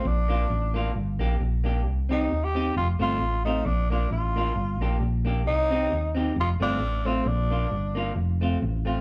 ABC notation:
X:1
M:4/4
L:1/16
Q:"Swing" 1/4=133
K:Bb
V:1 name="Tenor saxophone"
D8 z8 | z2 E3 G3 F2 F4 E2 | D2 D2 F8 z4 | E6 z2 F2 D4 C2 |
D8 z8 |]
V:2 name="Clean electric guitar"
z2 [B,DF]2 z2 [B,DF]2 z2 [B,DG]2 z2 [B,DG]2 | z2 [CEG]2 z2 [CEG]2 z2 [A,CF]2 z2 [A,CF]2 | z2 [B,DF]2 z2 [B,DF]2 z2 [B,DG]2 z2 [B,DG]2 | z2 [CEG]2 z2 [CEG]2 z2 [A,CF]2 z2 [A,CF]2 |
z2 [B,DF]2 z2 [B,DF]2 z2 [A,CF]2 z2 [A,CF]2 |]
V:3 name="Fingered electric bass" clef=bass
B,,,4 A,,,4 G,,,2 B,,,2 B,,,4 | C,,4 E,,4 F,,,2 G,,,2 A,,,4 | B,,,4 A,,,4 G,,,2 B,,,2 B,,,4 | C,,4 E,,4 F,,,2 G,,,2 A,,,4 |
B,,,4 G,,,4 F,,,4 A,,,4 |]